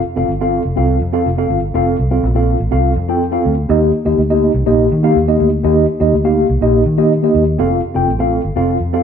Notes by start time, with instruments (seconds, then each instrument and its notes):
0.16 fingered electric bass F1, tine electric piano C4 F4 A4 F5
0.29 fingered electric bass G1
0.41 tine electric piano C4 F4 A4 F5
0.65 fingered electric bass F1
0.76 fingered electric bass C2, tine electric piano C4 F4 A4 F5
1.01 fingered electric bass F2
1.13 tine electric piano C4 F4 A4 F5
1.26 fingered electric bass F1
1.37 tine electric piano C4 F4 A4 F5
1.50 fingered electric bass G1
1.74 fingered electric bass F1, tine electric piano C4 F4 A4 F5
1.99 fingered electric bass C2
2.11 tine electric piano C4 F4 A4 F5
2.23 fingered electric bass A#1
2.35 tine electric piano C4 F4 A4 F5
2.60 fingered electric bass A1
2.71 fingered electric bass C2, tine electric piano C4 F4 A4 F5
2.96 fingered electric bass F2
3.08 tine electric piano C4 F4 A4 G5
3.32 tine electric piano C4 F4 A4 F5
3.45 fingered electric bass D2
3.69 fingered electric bass D#2, tine electric piano A#3 D#4 G4 D#5
4.05 fingered electric bass D#2, tine electric piano A#3 D#4 G4 D#5
4.18 fingered electric bass D2
4.30 tine electric piano A#3 D#4 G4 D#5
4.54 fingered electric bass C2
4.66 fingered electric bass A#1, tine electric piano A#3 D#4 G4 D#5
4.92 fingered electric bass D#3
5.03 tine electric piano A#3 D#4 G4 F5
5.16 fingered electric bass D#2
5.28 tine electric piano A#3 D#4 G4 D#5
5.40 fingered electric bass D2
5.63 fingered electric bass D#2, tine electric piano A#3 D#4 G4 D#5
6.00 fingered electric bass D#2, tine electric piano A#3 D#4 G4 D#5
6.13 fingered electric bass D2
6.24 tine electric piano A#3 D#4 G4 F5
6.49 fingered electric bass C2
6.61 fingered electric bass A#1, tine electric piano A#3 D#4 G4 D#5
6.86 fingered electric bass D#3
6.97 tine electric piano A#3 D#4 G4 D#5
7.23 tine electric piano A#3 D#4 G4 D#5
7.35 fingered electric bass D#2
7.58 fingered electric bass F1, tine electric piano C4 F4 A4 F5
7.94 fingered electric bass F1, tine electric piano C4 F4 A4 G5
8.08 fingered electric bass A1
8.19 tine electric piano C4 F4 A4 F5
8.45 fingered electric bass G1
8.56 fingered electric bass F1, tine electric piano C4 F4 A4 F5
8.80 fingered electric bass F2
8.93 tine electric piano C4 F4 A4 F5